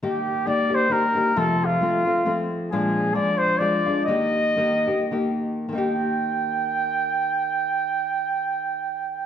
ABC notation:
X:1
M:3/4
L:1/8
Q:"Swing" 1/4=124
K:Eb
V:1 name="Trumpet"
G2 d c B2 | =A F4 z | A2 d c d2 | e4- e z |
g6- | g6 |]
V:2 name="Nylon-string guitar"
[E,B,EG]2 [E,B,EG] [B,EG] [E,B,EG] [B,EG] | [F,,C,F,=A,CF]2 [F,A,CF] [F,A,CF] [F,A,CF]2 | [B,,F,A,DF]2 [F,A,DF]2 [F,A,DF] [A,DF] | [E,B,EG]2 [E,B,EG] [B,EG] [E,B,EG]2 |
[E,B,EG]6- | [E,B,EG]6 |]